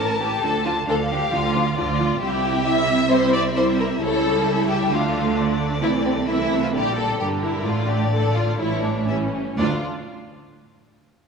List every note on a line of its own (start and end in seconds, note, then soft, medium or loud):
0.00 0.38 A1 medium
0.00 0.38 A2 medium
0.00 0.21 A#4 medium
0.00 0.83 A5 medium
0.21 0.29 E3 soft
0.21 0.29 C#4 soft
0.21 0.43 G4 medium
0.43 0.82 D2 medium
0.43 0.82 D3 medium
0.43 0.51 F3 soft
0.43 0.51 D4 soft
0.43 0.65 A4 medium
0.65 0.73 F3 medium
0.65 0.73 D4 medium
0.65 0.73 F4 medium
0.87 1.27 D2 medium
0.87 1.27 D3 medium
0.87 0.95 F3 medium
0.87 0.96 D4 medium
0.87 0.96 A4 medium
0.87 1.77 F5 medium
1.10 1.18 F3 soft
1.10 1.18 D4 soft
1.10 1.32 G4 medium
1.32 1.72 D2 medium
1.32 1.72 D3 medium
1.32 1.40 F3 soft
1.32 1.40 D4 soft
1.32 1.77 F4 medium
1.55 1.63 F3 soft
1.55 1.63 D4 soft
1.77 2.16 D2 medium
1.77 2.16 D3 medium
1.77 1.85 F3 soft
1.77 1.85 D4 soft
1.77 2.21 F4 medium
1.77 2.21 D5 medium
1.99 2.07 F3 soft
1.99 2.07 D4 soft
2.21 3.97 C2 medium
2.21 3.97 C3 medium
2.21 2.62 G3 medium
2.21 2.62 E4 medium
2.21 2.65 G4 medium
2.21 3.08 E5 medium
2.65 3.09 G3 medium
2.65 3.09 E4 medium
2.65 3.10 E5 medium
3.10 3.54 G3 medium
3.10 3.54 E4 medium
3.10 3.33 C5 medium
3.10 3.99 E5 medium
3.33 3.41 D5 medium
3.55 4.00 G3 medium
3.55 3.99 E4 medium
3.55 3.64 C5 medium
3.79 3.87 A#4 medium
4.01 4.90 C#2 medium
4.01 4.90 C#3 medium
4.01 4.90 G3 medium
4.01 4.90 E4 medium
4.01 4.68 A4 medium
4.01 4.46 C#5 medium
4.47 4.92 E5 medium
4.69 4.92 G4 medium
4.92 5.81 D2 medium
4.92 5.81 D3 medium
4.92 5.81 A3 medium
4.92 5.81 D4 medium
4.92 5.37 F4 medium
4.92 5.37 F5 medium
5.38 6.28 D5 medium
5.82 6.74 C2 medium
5.82 6.74 C3 medium
5.82 6.27 E3 medium
5.82 6.27 A3 medium
5.82 5.90 E4 medium
6.05 6.13 C4 medium
6.28 6.73 E3 medium
6.28 6.73 A3 medium
6.28 6.62 E4 medium
6.28 6.74 E5 medium
6.63 6.68 F4 medium
6.74 7.20 A#1 medium
6.74 7.20 A#2 medium
6.74 7.19 D3 soft
6.74 7.19 G3 medium
6.74 6.96 G4 medium
6.74 7.19 D5 medium
6.96 7.19 A4 medium
7.19 7.65 G1 medium
7.19 7.65 G2 medium
7.19 7.64 D3 medium
7.19 7.65 G3 soft
7.19 7.27 G4 medium
7.19 7.65 A#4 medium
7.42 7.65 E4 medium
7.65 8.58 A1 medium
7.65 8.58 A2 medium
7.65 8.11 D3 soft
7.65 8.11 A3 medium
7.65 7.88 F4 medium
7.65 8.60 D5 medium
7.88 8.12 G4 medium
8.12 8.58 D3 soft
8.12 8.58 A3 soft
8.12 8.35 A4 medium
8.35 8.59 F4 medium
8.59 9.35 A1 soft
8.59 9.35 A2 medium
8.59 9.06 E3 soft
8.59 9.06 G3 soft
8.59 8.83 E4 medium
8.59 9.07 C#5 medium
8.82 9.07 D4 medium
9.07 9.36 E3 soft
9.07 9.36 G3 soft
9.07 9.58 C#4 medium
9.07 9.16 E5 soft
9.57 9.85 D2 medium
9.57 9.85 A3 soft
9.57 9.85 D4 medium
9.57 9.84 F4 medium
9.57 9.85 D5 medium